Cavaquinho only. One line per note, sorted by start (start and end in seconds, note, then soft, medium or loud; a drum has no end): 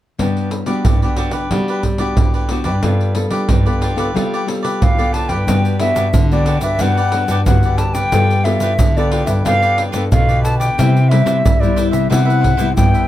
0.20 0.50 F#4 soft
0.20 0.50 G4 soft
0.20 0.51 B4 soft
0.20 0.51 D5 soft
0.51 muted cavaquinho stroke soft
0.67 0.84 G4 soft
0.67 0.83 B4 soft
0.67 0.83 D5 soft
0.84 1.00 F#4 soft
0.84 1.00 G4 soft
0.84 1.00 B4 soft
0.84 1.01 D5 soft
1.02 1.16 G4 medium
1.02 1.16 B4 soft
1.02 1.17 D5 medium
1.17 1.33 F#4 medium
1.17 1.33 G4 medium
1.17 1.32 B4 medium
1.17 1.31 D5 medium
1.33 1.50 G4 soft
1.33 1.49 B4 medium
1.33 1.49 D5 medium
1.51 1.67 F#4 soft
1.51 1.67 G4 soft
1.51 1.67 B4 soft
1.51 1.67 D5 soft
1.69 1.83 G4 soft
1.69 1.84 B4 medium
1.69 1.83 D5 medium
1.84 muted cavaquinho stroke soft
1.99 2.33 G4 soft
1.99 2.32 B4 medium
1.99 2.32 D5 medium
2.34 2.48 G4 soft
2.34 2.49 B4 soft
2.34 2.49 D5 medium
2.49 2.65 F#4 soft
2.49 2.65 G4 soft
2.49 2.64 B4 soft
2.49 2.63 D5 soft
2.65 2.82 G4 medium
2.65 2.82 B4 medium
2.65 2.81 D5 medium
2.83 3.14 F4 soft
2.83 3.15 G4 soft
2.83 3.15 B4 soft
2.83 3.15 D5 soft
3.16 muted cavaquinho stroke soft
3.31 3.48 G4 soft
3.31 3.48 B4 soft
3.31 3.47 D5 medium
3.49 3.65 F4 soft
3.49 3.65 G4 soft
3.49 3.65 B4 soft
3.49 3.65 D5 soft
3.66 3.81 G4 soft
3.66 3.81 B4 medium
3.66 3.82 D5 medium
3.81 3.97 F4 medium
3.81 3.98 G4 medium
3.81 3.98 B4 medium
3.81 3.97 D5 medium
3.98 4.15 G4 soft
3.98 4.15 B4 medium
3.98 4.14 D5 medium
4.16 4.31 F4 soft
4.16 4.31 G4 soft
4.16 4.32 B4 soft
4.16 4.32 D5 soft
4.34 4.47 G4 medium
4.34 4.47 B4 medium
4.34 4.48 D5 medium
4.48 muted cavaquinho stroke soft
4.63 4.97 G4 medium
4.63 4.97 B4 medium
4.63 4.96 D5 medium
4.98 5.14 G4 medium
4.98 5.14 B4 medium
4.98 5.14 D5 medium
5.14 5.30 F4 soft
5.14 5.31 G4 soft
5.14 5.30 B4 soft
5.14 5.29 D5 soft
5.30 5.48 G4 medium
5.30 5.47 B4 medium
5.30 5.46 D5 medium
5.49 5.80 G4 medium
5.49 5.81 B4 medium
5.49 5.81 D5 medium
5.81 5.95 F#4 soft
5.81 5.95 G4 soft
5.81 5.96 B4 soft
5.81 5.96 D5 soft
5.96 6.06 F#4 medium
5.96 6.07 G4 medium
5.96 6.07 B4 medium
5.96 6.07 D5 medium
6.33 6.46 G4 soft
6.33 6.46 B4 soft
6.33 6.46 D5 soft
6.46 6.62 F#4 medium
6.46 6.63 G4 medium
6.46 6.63 B4 medium
6.46 6.62 D5 medium
6.63 6.80 G4 soft
6.63 6.80 B4 soft
6.63 6.79 D5 soft
6.81 6.97 F#4 medium
6.81 6.97 G4 medium
6.81 6.97 B4 medium
6.81 6.97 D5 medium
6.98 7.13 G4 medium
6.98 7.14 B4 medium
6.98 7.13 D5 medium
7.14 7.29 F#4 soft
7.14 7.29 G4 soft
7.14 7.30 B4 soft
7.14 7.30 D5 soft
7.30 7.40 F#4 medium
7.30 7.40 G4 medium
7.30 7.40 B4 medium
7.30 7.40 D5 medium
7.65 7.96 G4 soft
7.65 7.95 B4 soft
7.65 7.94 D5 soft
7.95 8.13 G4 soft
7.95 8.12 B4 soft
7.95 8.12 D5 medium
8.14 8.45 F4 medium
8.14 8.45 G4 medium
8.14 8.46 B4 medium
8.14 8.46 D5 medium
8.46 8.61 F4 soft
8.46 8.61 G4 soft
8.46 8.62 B4 soft
8.46 8.61 D5 medium
8.62 8.72 F4 medium
8.62 8.72 G4 medium
8.62 8.72 B4 medium
8.62 8.72 D5 medium
8.98 9.11 G4 soft
8.98 9.11 B4 soft
8.98 9.12 D5 soft
9.11 9.28 F4 medium
9.11 9.26 G4 medium
9.11 9.26 B4 medium
9.11 9.25 D5 medium
9.26 9.44 G4 soft
9.26 9.44 B4 soft
9.26 9.43 D5 soft
9.45 9.61 F4 medium
9.45 9.61 G4 medium
9.45 9.61 B4 medium
9.45 9.61 D5 medium
9.62 9.76 G4 medium
9.62 9.77 B4 medium
9.62 9.78 D5 medium
9.77 9.91 F4 soft
9.77 9.91 G4 soft
9.77 9.92 B4 medium
9.77 9.92 D5 soft
9.92 10.03 F4 medium
9.92 10.03 G4 medium
9.92 10.03 B4 medium
9.92 10.04 D5 medium
10.29 10.60 G4 soft
10.29 10.59 B4 soft
10.29 10.58 D5 soft
10.60 10.77 G4 soft
10.60 10.76 B4 soft
10.60 10.76 D5 soft
10.78 11.09 E4 medium
10.78 11.10 B4 medium
10.78 11.10 C5 medium
10.78 11.10 E5 medium
11.11 11.24 E4 soft
11.11 11.25 B4 soft
11.11 11.25 C5 soft
11.11 11.25 E5 soft
11.26 11.36 E4 medium
11.26 11.36 B4 medium
11.26 11.36 C5 medium
11.26 11.36 E5 medium
11.61 11.76 B4 soft
11.61 11.75 C5 soft
11.61 11.76 E5 soft
11.76 11.92 E4 medium
11.76 11.91 B4 medium
11.76 11.92 C5 medium
11.76 11.90 E5 medium
11.91 12.08 B4 soft
11.91 12.09 C5 soft
11.91 12.08 E5 soft
12.10 12.26 E4 medium
12.10 12.26 B4 medium
12.10 12.26 C5 medium
12.10 12.24 E5 medium
12.25 12.41 B4 medium
12.25 12.40 C5 medium
12.25 12.41 E5 medium
12.41 12.56 E4 soft
12.41 12.57 B4 medium
12.41 12.56 C5 soft
12.41 12.57 E5 medium
12.57 12.68 E4 medium
12.57 12.68 B4 medium
12.57 12.68 C5 medium
12.57 12.68 E5 medium
12.94 13.08 B4 soft
12.94 13.08 C5 soft
12.94 13.08 E5 soft